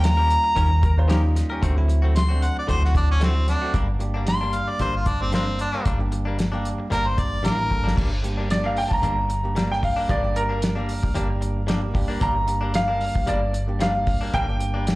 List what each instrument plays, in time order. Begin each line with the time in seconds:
Already playing: fingered electric bass D#2
0.03 tine electric piano G3 A#3 C#4 F4, harmonica A#5, muted clean electric guitar stroke, snare, closed hi-hat
0.17 clean electric guitar C#4 G4 A#4
0.30 closed hi-hat
0.44 muted clean electric guitar stroke
0.56 fingered electric bass D#2, clean electric guitar D#3 C#4 G4 A#4, kick, closed hi-hat
0.70 muted clean electric guitar stroke
0.82 upright piano A#4, muted clean electric guitar stroke, kick, closed hi-hat
0.97 tine electric piano G3 A#3 C#4 F4, upright piano C5
1.08 clean electric guitar D#3 C#4 G4 A#4, upright piano D#4 G4, snare, closed hi-hat
1.23 muted clean electric guitar stroke
1.36 muted clean electric guitar stroke, snare, closed hi-hat
1.50 clean electric guitar C#4 G4 A#4
1.62 fingered electric bass D2, clean electric guitar D3 A3 C4 F#4, kick, closed hi-hat
1.76 tine electric piano F#3 A3 C4 E4, muted clean electric guitar stroke
1.88 muted clean electric guitar stroke, closed hi-hat
2.02 clean electric guitar A3 C4 F#4
2.15 harmonica C6, muted clean electric guitar stroke, snare, closed hi-hat
2.29 tine electric piano F#3 A3 C4 D4, clean electric guitar A3 C4 F#4
2.42 harmonica F#5, closed hi-hat
2.56 harmonica D5, muted clean electric guitar stroke
2.67 fingered electric bass D2, clean electric guitar D3 A3 C4 F#4, tine electric piano F#3 A3 C4 E4, harmonica C5, kick, closed hi-hat
2.82 harmonica F#4, muted clean electric guitar stroke, snare
2.95 harmonica D4, muted clean electric guitar stroke, kick, closed hi-hat
3.11 harmonica C#4
3.20 clean electric guitar D3 A3 C4 F#4, tine electric piano F#3 A3 C4 E4, harmonica C4, snare, closed hi-hat
3.35 muted clean electric guitar stroke
3.46 tine electric piano F#3 A3 C4 F#4, harmonica D4, muted clean electric guitar stroke, snare, closed hi-hat
3.62 clean electric guitar A3 C4 F#4
3.73 fingered electric bass G1, clean electric guitar G2 G3 A#3 D4, kick, closed hi-hat
3.88 muted clean electric guitar stroke
3.99 tine electric piano G3 A#3 D4 G4, muted clean electric guitar stroke, closed hi-hat
4.14 clean electric guitar G3 A#3 D4
4.26 tine electric piano G3 A#3 D4 G4, harmonica C6, muted clean electric guitar stroke, snare, closed hi-hat
4.41 clean electric guitar G3 A#3 D4
4.53 harmonica F5, closed hi-hat
4.68 harmonica D5, muted clean electric guitar stroke
4.79 fingered electric bass G1, clean electric guitar G2 G3 A#3 D4, harmonica C5, kick, closed hi-hat
4.94 harmonica F4, muted clean electric guitar stroke
5.06 harmonica D4, muted clean electric guitar stroke, kick, closed hi-hat
5.20 tine electric piano G3 A#3 D4 G4, harmonica C4
5.32 clean electric guitar G2 G3 A#3 D4, harmonica C4, snare, closed hi-hat
5.47 muted clean electric guitar stroke
5.59 harmonica D4, muted clean electric guitar stroke, closed hi-hat
5.73 clean electric guitar G3 A#3 D4
5.85 fingered electric bass G1, clean electric guitar G2 G3 A#3 D4, kick, closed hi-hat
5.99 tine electric piano G3 A#3 D4 G4, muted clean electric guitar stroke
6.11 muted clean electric guitar stroke, closed hi-hat
6.25 clean electric guitar G3 A#3 D4
6.38 muted clean electric guitar stroke, snare, closed hi-hat
6.52 tine electric piano G3 A#3 D4 G4, clean electric guitar G3 A#3 D4
6.65 closed hi-hat
6.78 muted clean electric guitar stroke
6.90 fingered electric bass G1, clean electric guitar G2 G3 A#3 D4, tine electric piano G3 A#3 D4 G4, harmonica A#4, closed hi-hat
7.05 harmonica C5, muted clean electric guitar stroke
7.17 harmonica D5, muted clean electric guitar stroke, kick, closed hi-hat
7.43 fingered electric bass A1, clean electric guitar G2 G3 A#3 D4, tine electric piano G3 A#3 D4 E4, harmonica A#4, snare, closed hi-hat
7.58 muted clean electric guitar stroke
7.70 fingered electric bass G1, tine electric piano G3 A#3 D4 A4, muted clean electric guitar stroke, kick
7.84 clean electric guitar G3 A#3 D4, snare
7.96 fingered electric bass G1, clean electric guitar G2 G3 A#3 D4, kick, crash
8.11 muted clean electric guitar stroke
8.23 tine electric piano G3 A#3 D4 G4, muted clean electric guitar stroke, closed hi-hat
8.37 clean electric guitar G3 A#3 D4
8.50 tine electric piano G3 A#3 D4 G4, upright piano D5, muted clean electric guitar stroke, snare, closed hi-hat
8.64 clean electric guitar G3 A#3 D4, upright piano F5
8.77 upright piano G5, open hi-hat
8.88 upright piano A5, muted clean electric guitar stroke, kick
8.93 upright piano A#5
9.02 fingered electric bass G1, clean electric guitar G2 G3 A#3 D4, closed hi-hat
9.17 muted clean electric guitar stroke
9.29 muted clean electric guitar stroke, closed hi-hat
9.44 tine electric piano G3 A#3 D4 G4
9.55 clean electric guitar G2 G3 A#3 D4, snare, closed hi-hat
9.70 upright piano G5, muted clean electric guitar stroke, snare
9.82 upright piano F5, muted clean electric guitar stroke, kick, open hi-hat
9.96 clean electric guitar G3 A#3 D4
10.09 fingered electric bass G1, clean electric guitar G2 G3 A#3 D4, upright piano D5, kick, closed hi-hat
10.23 tine electric piano G3 A#3 D4 G4, muted clean electric guitar stroke
10.35 upright piano A#4, muted clean electric guitar stroke, closed hi-hat
10.49 clean electric guitar G3 A#3 D4
10.61 muted clean electric guitar stroke, snare, closed hi-hat
10.75 tine electric piano G3 A#3 D4 G4, clean electric guitar G3 A#3 D4
10.89 open hi-hat
11.03 muted clean electric guitar stroke, kick
11.14 fingered electric bass G1, clean electric guitar G2 G3 A#3 D4, tine electric piano G3 A#3 D4 G4, closed hi-hat
11.29 muted clean electric guitar stroke
11.41 muted clean electric guitar stroke, closed hi-hat
11.67 clean electric guitar G2 G3 A#3 D4, tine electric piano G3 A#3 D4 G4, snare, closed hi-hat
11.82 muted clean electric guitar stroke
11.94 tine electric piano G3 A#3 D4 G4, muted clean electric guitar stroke, kick, open hi-hat
12.08 clean electric guitar G3 A#3 D4
12.20 fingered electric bass G1, clean electric guitar G2 G3 A#3 D4, upright piano A#5, kick, closed hi-hat
12.35 muted clean electric guitar stroke
12.47 tine electric piano G3 A#3 D4 G4, muted clean electric guitar stroke, closed hi-hat
12.61 clean electric guitar G3 A#3 D4
12.73 tine electric piano G3 A#3 D4 G4, upright piano F5, muted clean electric guitar stroke, snare, closed hi-hat
12.88 clean electric guitar G3 A#3 D4
13.01 open hi-hat
13.15 muted clean electric guitar stroke, kick
13.26 fingered electric bass G1, clean electric guitar G2 G3 A#3 D4, upright piano D5, closed hi-hat
13.41 muted clean electric guitar stroke
13.53 muted clean electric guitar stroke, closed hi-hat
13.67 tine electric piano G3 A#3 D4 G4
13.80 clean electric guitar G2 G3 A#3 D4, upright piano F5, snare, closed hi-hat
13.94 muted clean electric guitar stroke
14.07 muted clean electric guitar stroke, kick, open hi-hat
14.21 clean electric guitar G3 A#3 D4
14.33 fingered electric bass G1, clean electric guitar G2 G3 A#3 D4, upright piano G5, kick, closed hi-hat
14.48 tine electric piano G3 A#3 D4 G4, muted clean electric guitar stroke
14.60 muted clean electric guitar stroke, closed hi-hat
14.74 clean electric guitar G3 A#3 D4
14.86 muted clean electric guitar stroke, snare, closed hi-hat